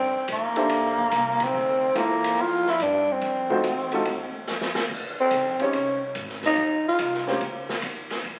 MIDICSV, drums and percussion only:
0, 0, Header, 1, 2, 480
1, 0, Start_track
1, 0, Tempo, 419287
1, 1766, Time_signature, 4, 2, 24, 8
1, 9605, End_track
2, 0, Start_track
2, 0, Title_t, "Drums"
2, 317, Note_on_c, 9, 44, 58
2, 317, Note_on_c, 9, 51, 70
2, 432, Note_off_c, 9, 44, 0
2, 432, Note_off_c, 9, 51, 0
2, 639, Note_on_c, 9, 51, 48
2, 754, Note_off_c, 9, 51, 0
2, 793, Note_on_c, 9, 51, 65
2, 907, Note_off_c, 9, 51, 0
2, 1127, Note_on_c, 9, 36, 53
2, 1241, Note_off_c, 9, 36, 0
2, 1275, Note_on_c, 9, 44, 62
2, 1275, Note_on_c, 9, 51, 73
2, 1389, Note_off_c, 9, 44, 0
2, 1389, Note_off_c, 9, 51, 0
2, 1601, Note_on_c, 9, 51, 74
2, 1605, Note_on_c, 9, 36, 74
2, 1715, Note_off_c, 9, 51, 0
2, 1720, Note_off_c, 9, 36, 0
2, 2238, Note_on_c, 9, 44, 49
2, 2238, Note_on_c, 9, 51, 62
2, 2352, Note_off_c, 9, 44, 0
2, 2352, Note_off_c, 9, 51, 0
2, 2566, Note_on_c, 9, 51, 72
2, 2680, Note_off_c, 9, 51, 0
2, 3048, Note_on_c, 9, 38, 34
2, 3162, Note_off_c, 9, 38, 0
2, 3200, Note_on_c, 9, 44, 58
2, 3200, Note_on_c, 9, 51, 65
2, 3314, Note_off_c, 9, 44, 0
2, 3314, Note_off_c, 9, 51, 0
2, 3679, Note_on_c, 9, 51, 56
2, 3794, Note_off_c, 9, 51, 0
2, 4007, Note_on_c, 9, 36, 63
2, 4122, Note_off_c, 9, 36, 0
2, 4162, Note_on_c, 9, 44, 57
2, 4162, Note_on_c, 9, 51, 64
2, 4276, Note_off_c, 9, 44, 0
2, 4276, Note_off_c, 9, 51, 0
2, 4483, Note_on_c, 9, 51, 47
2, 4597, Note_off_c, 9, 51, 0
2, 4639, Note_on_c, 9, 51, 62
2, 4753, Note_off_c, 9, 51, 0
2, 5119, Note_on_c, 9, 44, 61
2, 5125, Note_on_c, 9, 38, 53
2, 5233, Note_off_c, 9, 44, 0
2, 5239, Note_off_c, 9, 38, 0
2, 5280, Note_on_c, 9, 38, 57
2, 5395, Note_off_c, 9, 38, 0
2, 5436, Note_on_c, 9, 38, 78
2, 5551, Note_off_c, 9, 38, 0
2, 5601, Note_on_c, 9, 36, 63
2, 5601, Note_on_c, 9, 49, 59
2, 5715, Note_off_c, 9, 49, 0
2, 5716, Note_off_c, 9, 36, 0
2, 6075, Note_on_c, 9, 44, 52
2, 6075, Note_on_c, 9, 51, 65
2, 6189, Note_off_c, 9, 44, 0
2, 6189, Note_off_c, 9, 51, 0
2, 6404, Note_on_c, 9, 51, 45
2, 6518, Note_off_c, 9, 51, 0
2, 6561, Note_on_c, 9, 51, 57
2, 6675, Note_off_c, 9, 51, 0
2, 7038, Note_on_c, 9, 44, 54
2, 7038, Note_on_c, 9, 51, 65
2, 7152, Note_off_c, 9, 44, 0
2, 7152, Note_off_c, 9, 51, 0
2, 7200, Note_on_c, 9, 38, 22
2, 7315, Note_off_c, 9, 38, 0
2, 7357, Note_on_c, 9, 38, 37
2, 7359, Note_on_c, 9, 51, 40
2, 7472, Note_off_c, 9, 38, 0
2, 7474, Note_off_c, 9, 51, 0
2, 7511, Note_on_c, 9, 51, 47
2, 7625, Note_off_c, 9, 51, 0
2, 7996, Note_on_c, 9, 44, 53
2, 7996, Note_on_c, 9, 51, 70
2, 8110, Note_off_c, 9, 44, 0
2, 8110, Note_off_c, 9, 51, 0
2, 8169, Note_on_c, 9, 38, 27
2, 8283, Note_off_c, 9, 38, 0
2, 8323, Note_on_c, 9, 38, 42
2, 8437, Note_off_c, 9, 38, 0
2, 8479, Note_on_c, 9, 51, 55
2, 8593, Note_off_c, 9, 51, 0
2, 8805, Note_on_c, 9, 38, 54
2, 8920, Note_off_c, 9, 38, 0
2, 8953, Note_on_c, 9, 44, 62
2, 8953, Note_on_c, 9, 51, 70
2, 9068, Note_off_c, 9, 44, 0
2, 9068, Note_off_c, 9, 51, 0
2, 9277, Note_on_c, 9, 51, 45
2, 9282, Note_on_c, 9, 38, 42
2, 9391, Note_off_c, 9, 51, 0
2, 9397, Note_off_c, 9, 38, 0
2, 9440, Note_on_c, 9, 51, 49
2, 9555, Note_off_c, 9, 51, 0
2, 9605, End_track
0, 0, End_of_file